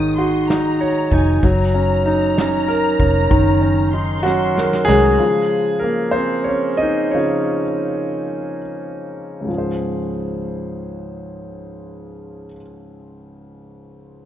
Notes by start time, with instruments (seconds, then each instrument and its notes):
Already playing: fingered electric bass G#1, grand piano D#3 D#4 F#4 C#5, violin section D#6
0.18 grand piano F#4, violin section C6, closed hi-hat
0.49 grand piano D#4, violin section A#5, snare, closed hi-hat
0.81 grand piano C#5, closed hi-hat
1.11 fingered electric bass F1, grand piano D#4, violin section G#5, kick, closed hi-hat
1.43 fingered electric bass F#1, grand piano F#3, violin section A#5, kick, closed hi-hat
1.74 grand piano C#4, closed hi-hat
2.06 grand piano D#4, closed hi-hat
2.37 grand piano C#4, snare, closed hi-hat
2.68 grand piano A#4, closed hi-hat
2.99 fingered electric bass F1, grand piano C#4, kick, closed hi-hat
3.30 fingered electric bass F#1, grand piano D#3, kick, closed hi-hat
3.62 grand piano C#4, closed hi-hat
3.93 grand piano D#4, violin section C6, closed hi-hat
4.23 grand piano F#3 C#4 F#4, snare
4.56 grand piano A#4, snare
4.73 snare
4.85 fingered electric bass C2, grand piano G#3 C#4 G#4, violin section A#5
4.89 snare
5.18 grand piano C#3 F3
5.80 grand piano A#3 A#4
6.11 grand piano C5
6.16 grand piano C4
6.44 grand piano C#5
6.48 grand piano C#4
6.77 grand piano D#5
6.82 grand piano D#4
7.11 grand piano C#3 F3 C5 C#5
7.15 grand piano C#4
9.41 grand piano C#2 G#2
9.48 grand piano F3 C#4
9.55 grand piano G#4 C5